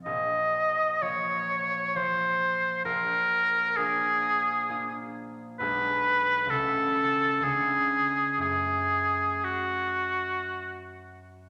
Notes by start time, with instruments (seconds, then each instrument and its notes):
Already playing: harp F3 F4
0.05 harp A#1 A#2, oboe D#5
1.01 harp F3 A#3 F4, oboe C#5
1.95 harp F3 A#3 F4, oboe C5
2.85 harp A#1 A#2, oboe A#4
3.77 harp A#3 D4 F4, oboe G#4
4.69 harp A#3 D4 F4
5.59 harp B1 B2 G#3 D4 G#4, oboe B4
6.46 harp C#2 C#3
6.50 harp A3 C#4 F#4, oboe A4
7.40 harp C#2 C#3 B3 D4 F4, oboe G#4
8.37 harp F#2 A3 C#4 F#4, oboe G#4
9.44 oboe F#4